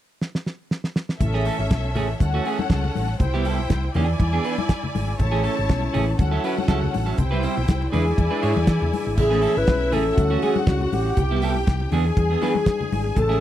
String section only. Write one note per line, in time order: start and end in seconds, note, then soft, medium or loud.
1.20 2.18 C#4 medium
1.20 2.18 A4 medium
1.20 2.18 E5 medium
2.19 3.18 C#4 medium
2.19 3.18 A4 medium
2.19 3.18 F#5 medium
3.21 3.94 E4 medium
3.21 3.94 C5 medium
3.21 3.94 G5 medium
3.94 5.17 E4 medium
3.94 5.17 D5 medium
3.94 5.17 G#5 medium
5.20 6.17 E4 medium
5.20 6.17 C#5 medium
5.20 6.17 A5 medium
6.18 7.16 C#4 medium
6.18 7.17 A4 medium
6.18 7.17 F#5 medium
7.19 7.92 E4 medium
7.19 7.92 C5 medium
7.19 7.92 G5 medium
7.92 9.15 E4 medium
7.92 9.15 D5 medium
7.92 9.15 G#5 medium
9.17 10.16 E4 medium
9.17 10.15 E5 medium
10.17 11.15 F#4 medium
10.17 11.15 F#5 medium
11.18 11.91 G4 medium
11.18 11.91 G5 medium
11.93 13.15 G#4 medium
11.93 13.15 G#5 medium
13.18 13.40 A3 medium
13.18 13.40 A5 medium